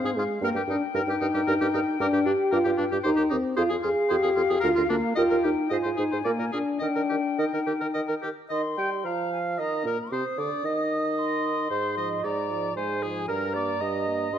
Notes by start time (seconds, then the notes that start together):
Already playing: C4 F5
0.03 G#2 G#4
0.16 G#2 G#3 F4 G#4
0.41 G2 A#3 A#4 G5
0.54 G2 G4 A#4
0.67 G2 D4 D#4 A#4
0.94 G2 D#4 A#4
1.07 G2 G4 A#4
1.21 G2 D#4 A#4
1.34 G2 G4 A#4
1.47 G2 A#4
1.61 G2 G4 A#4
1.74 G2 D#4 A#4
2.00 G2 D4 G4 A#4
2.13 G2 G4
2.26 G2 D4 G4
2.52 G2 F4 G4 A#4
2.65 G2 G4
2.78 G2 D4 G4
2.91 G2 G4
3.04 D#2 D#4 G4 C5
3.16 D#2 G4
3.30 D#2 C4 D#4 G4
3.57 F2 F4 G#4 C5 F5
3.69 F2 G#4
3.83 F2 F4 G#4
4.09 F2 G4 G#4 C5
4.23 F2 G#4
4.36 F2 F4 G#4
4.49 F2 G#4
4.60 D2 F4 A#4
4.76 D2 F4 A#4
4.89 D2 A#3 D4 A#4
5.16 D#2 F4 A#4 D#5 G5
5.30 D#2 A#4
5.43 D#2 D#4 G4 A#4
5.70 G#2 F4 C5 D#5 G#5
5.83 G#2 C5
5.97 G#2 D#4 G#4 C5
6.12 G#2 C5
6.24 A#2 A#3 A#4 D5
6.39 A#2 A#4
6.52 A#2 D4 G#4 A#4
6.79 D#3 D4 A#4 D#5 G5
6.95 D#3 A#4
7.09 D#3 G4 A#4
7.38 D#3 D#4 A#4 D#5
7.52 D#3 A#4
7.66 D#3 G4 A#4
7.79 D#3 A#4
7.94 D#3 A#4 D#5
8.08 D#3 A#4
8.22 D#3 G4 A#4
8.49 D#3 D#4 D#5 C6
8.78 G3 G4 G5
9.05 F3 F4 F5 A#5
9.32 G#5
9.58 D#3 D#4 D#5 A#5
9.85 A#2 A#3 A#4
10.11 C3 C4 C5 D#6
10.38 D3 D4 D5
10.64 D#3 D#4 D#5
11.18 C6
11.70 G#2 G#3 C5
11.97 F3 D#5
12.24 G#2 G#3 D5 A#5
12.52 F3
12.76 G#2 G#3 C5 G#5
13.03 F3 G#4
13.28 G2 G3 A#4 A#5
13.54 A#3 D5
13.80 G2 G3 D#5
14.08 A#3
14.33 G2 G3 C6